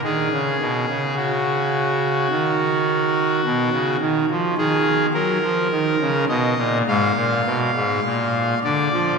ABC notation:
X:1
M:4/4
L:1/16
Q:1/4=53
K:Ebm
V:1 name="Pipe organ"
A4 G8- G2 z2 | A2 B4 e2 f6 =d2 |]
V:2 name="Pipe organ" clef=bass
E, D, C, D,4- D, ^D,4 =B,, ^C, D, F, | E,2 G, F, E, D, C, B,, A,, B,, C, A,, B,,2 =D, F, |]